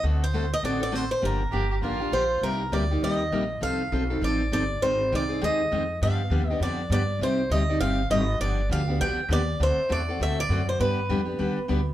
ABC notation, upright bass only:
X:1
M:4/4
L:1/8
Q:"Swing" 1/4=201
K:Gm
V:1 name="Upright bass" clef=bass
D,,4 A,,,4 | G,,,2 G,,,2 A,,,2 B,,,2 | [K:Cm] C,,2 D,,2 E,,2 B,,,2 | C,,2 =B,,,2 =A,,,2 G,,,2 |
A,,,2 C,,2 E,,2 F,,2 | G,,2 E,,2 F,,2 G,,2 | C,,2 D,,2 G,,,2 A,,,2 | G,,,2 D,,2 =B,,, z E,,2 |
D,, z =E,,2 D,,2 ^F,,2 | G,,2 F,,2 E,, z D,,2 |]